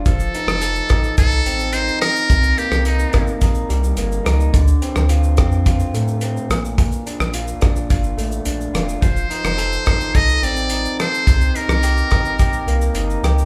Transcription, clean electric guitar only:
\new Staff \with { instrumentName = "Clean electric guitar" } { \time 4/4 \key f \mixolydian \tempo 4 = 107 f8 ees'8 a'8 ees'8 a'8 c'8 ees'4 | c8 bes8 ees'8 bes8 ees'8 g8 bes8 ees'8 | d8 c'8 f'8 c'8 f'8 a8 c'8 bes,8 | bes,8 d'8 f'8 d'8 f'8 a8 d'8 f'8 |
f8 ees'8 a'8 ees'8 a'8 c'8 ees'8 a'8 | c8 ees'8 g'8 ees'8 g'8 bes8 ees'8 g'8 | }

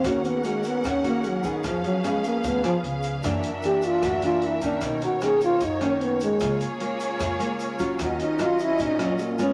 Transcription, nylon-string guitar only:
\new Staff \with { instrumentName = "Nylon-string guitar" } { \time 4/4 \key ees \minor \tempo 4 = 151 << { <bes des' ges'>4 <bes des' ges'>4 r8 <bes des' ges'>4 <ces' des' aes'>8~ | <ces' des' aes'>4 <ces' des' aes'>4 r8 <ces' f' aes'>4. | <fes bes d'>8 r8 <fes bes d'>4. <fes bes d'>4 <ees bes des'>8~ | <ees bes des'>4 <dis ais cis'>4 r8 <dis ais cis'>4. |
<aes bes f'>8 r8 <aes bes f'>4. <aes bes f'>4 <ges des' f'>8~ | <ges des' f'>4 <ges des' f'>4. <ges des' f'>4 <aes ces' f'>8 | } \\ { ees2 ees2 | f2 f4 r4 | ges,2 ges,2 | b,2 fis,2 |
des2 des2 | ees2 bes,2 | } >> }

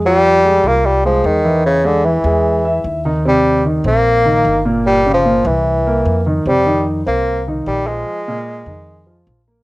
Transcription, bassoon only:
\new Staff \with { instrumentName = "Bassoon" } { \clef bass \time 4/4 \key f \dorian \tempo 4 = 150 g4. bes8 g8 f8 ees4 | des8 d8 e2 r4 | g4 r8 bes2 r8 | \tuplet 3/2 { g4 f8~ } f8 fes2 r8 |
g4 r8 bes4 r8 g8 aes8~ | aes2. r4 | }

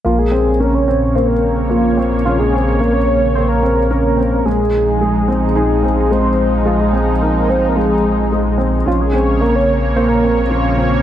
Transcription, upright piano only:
\new Staff \with { instrumentName = "Upright piano" } { \time 4/4 \key bes \minor \tempo 4 = 109 bes8 c'8 des'8 c'8 bes8 r8 bes8 c'8 | des'8 c'8 bes8 r8 bes8 c'8 des'8 c'8 | aes8 r8 aes8 c'8 ees'8 c'8 aes8 r8 | aes8 c'8 ees'8 c'8 aes8 r8 aes8 c'8 |
des'8 c'8 bes8 r8 bes8 c'8 des'8 c'8 | }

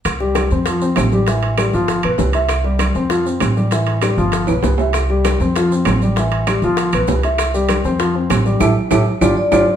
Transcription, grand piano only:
\new Staff \with { instrumentName = "Grand piano" } { \time 4/4 \key c \major \tempo 4 = 196 r8 <g g'>4 <c' c''>8 <f f'>8 <c' c''>4 <g g'>8 | <e e'>4 <g g'>8 <f f'>4 <b b'>4 <e' e''>8~ | <e' e''>8 <g g'>4 <c' c''>8 <f f'>8 <c' c''>4 <g g'>8 | <e e'>4 <g g'>8 <f f'>4 <b b'>4 <e' e''>8~ |
<e' e''>8 <g g'>4 <c' c''>8 <f f'>8 <c' c''>4 <g g'>8 | <e e'>4 <g g'>8 <f f'>4 <b b'>4 <e' e''>8~ | <e' e''>8 <g g'>4 <c' c''>8 <f f'>8 <c' c''>4 <g g'>8 | <e' g' a'>8 r8 <e' g' a'>8 r8 <d' f' g'>8 r8 <d' f' g'>8 r8 | }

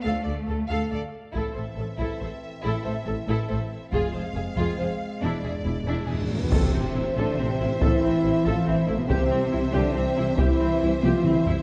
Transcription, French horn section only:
\new Staff \with { instrumentName = "French horn section" } { \time 3/4 \key a \minor \tempo 4 = 139 << { d'8 r2 r8 | c'2.~ | c'2. | c'2. |
d'2~ \tuplet 3/2 { d'8. a16 b8 } | c'4. d'8 c'4 | e'4. f'8 \tuplet 3/2 { e'8. a16 b8 } | c'4. d'8 c'4 |
e'4. f'8 e'8 r8 | } \\ { f8 r2 r8 | e2.~ | e2. | aes2.~ |
aes2~ aes8 r8 | r2. | r2. | r2. |
r2. | } >> }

